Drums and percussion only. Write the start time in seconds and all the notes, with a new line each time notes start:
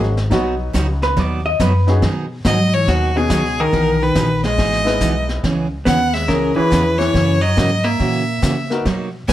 0.03 snare
0.17 snare
0.31 brush sweep, kick, snare
0.74 kick, snare, hi-hat pedal
1.02 snare
1.17 brush sweep, kick, snare
1.60 kick, snare, hi-hat pedal
1.88 snare
2.02 brush sweep, kick, snare
2.45 kick, snare, hi-hat pedal
2.88 brush sweep, kick, snare
3.30 kick, snare, hi-hat pedal
3.73 brush sweep, kick, snare
4.15 kick, snare, hi-hat pedal
4.44 snare
4.58 brush sweep, kick, snare
4.72 snare
4.87 snare
5.01 kick, snare, hi-hat pedal
5.29 snare
5.44 brush sweep, kick, snare
5.86 kick, snare, hi-hat pedal
6.15 snare
6.29 brush sweep, kick, snare
6.72 kick, snare, hi-hat pedal
7.00 snare
7.14 brush sweep, kick, snare
7.57 kick, snare, hi-hat pedal
8.00 brush sweep, kick, snare
8.43 kick, snare, hi-hat pedal
8.71 snare
8.85 brush sweep, kick, snare
9.29 kick, snare, hi-hat pedal